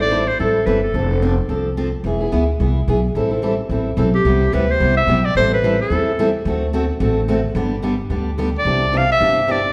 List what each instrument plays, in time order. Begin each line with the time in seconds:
Already playing: upright bass A1
0.00 steel-string acoustic guitar C4 E4 A4, clarinet D5
0.11 steel-string acoustic guitar E3 G3 C4 E4 A4
0.28 clarinet C5
0.39 upright bass A1, steel-string acoustic guitar E3 G3 C4 E4 A4, clarinet A4
0.66 upright bass G1, steel-string acoustic guitar E3 G3 C4 E4 A4, clarinet B4
0.83 clarinet A4
0.94 upright bass F1, steel-string acoustic guitar F3 C4 D4 A4
1.10 steel-string acoustic guitar C4 D4 A4
1.22 steel-string acoustic guitar F3 C4 D4 A4
1.49 upright bass C2, steel-string acoustic guitar F3 C4 D4 A4
1.77 steel-string acoustic guitar F3 C4 D4 A4
2.04 upright bass E1, steel-string acoustic guitar E3 B3 E4 G#4
2.20 steel-string acoustic guitar B3 E4 G#4
2.32 upright bass D2, steel-string acoustic guitar E3 B3 E4 G#4
2.60 upright bass C2, steel-string acoustic guitar E3 B3 E4 G#4
2.88 upright bass B1, steel-string acoustic guitar E3 B3 E4 G#4
3.15 upright bass A1, steel-string acoustic guitar E3 G3 C4 E4 A4
3.31 steel-string acoustic guitar C4 E4 A4
3.42 steel-string acoustic guitar E3 G3 C4 E4 A4
3.69 upright bass A1, steel-string acoustic guitar E3 G3 C4 E4 A4
3.97 upright bass B1, steel-string acoustic guitar E3 G3 C4 E4 A4
4.15 clarinet G4
4.25 upright bass C2, steel-string acoustic guitar C3 G3 B3 E4 G4
4.52 upright bass D2, steel-string acoustic guitar C3 G3 B3 E4 G4, clarinet B4
4.71 clarinet C5
4.80 upright bass C2, steel-string acoustic guitar C3 G3 B3 E4 G4
4.97 clarinet E5
5.07 upright bass B1, steel-string acoustic guitar C3 G3 B3 E4 G4
5.25 clarinet D5
5.35 upright bass A1, steel-string acoustic guitar E3 G3 C4 E4 A4, clarinet C5
5.54 clarinet B4
5.63 steel-string acoustic guitar E3 G3 C4 E4 A4
5.81 clarinet A4
5.90 upright bass E2, steel-string acoustic guitar E3 G3 C4 E4 A4
6.19 steel-string acoustic guitar E3 G3 C4 E4 A4
6.45 upright bass D2, steel-string acoustic guitar D3 A3 C4 F#4 A4
6.73 steel-string acoustic guitar D3 A3 C4 F#4 A4
7.00 upright bass A1, steel-string acoustic guitar D3 A3 C4 F#4 A4
7.28 steel-string acoustic guitar D3 A3 C4 F#4 A4
7.55 upright bass G1, steel-string acoustic guitar D3 G3 B3 D4 G4
7.82 steel-string acoustic guitar D3 G3 B3 D4 G4
8.10 upright bass D2, steel-string acoustic guitar D3 G3 B3 D4 G4
8.38 steel-string acoustic guitar D3 G3 B3 D4 G4
8.59 clarinet D5
8.65 upright bass C2, steel-string acoustic guitar C3 E3 D4 G4
8.92 steel-string acoustic guitar C3 E3 D4 G4
8.97 clarinet F5
9.12 clarinet E5
9.20 upright bass G1, steel-string acoustic guitar C3 E3 D4 G4
9.47 steel-string acoustic guitar C3 E3 D4 G4
9.52 clarinet D5